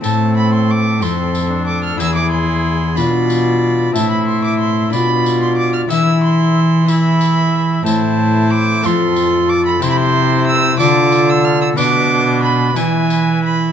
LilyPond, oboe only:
\new Staff \with { instrumentName = "Oboe" } { \time 6/8 \key a \minor \tempo 4. = 61 a'4. a'4. | gis'4. d''4. | e''4. d''4. | e''4 r8 e''4. |
c''4. a'4. | c''4. a'4. | b'4. b'4. | }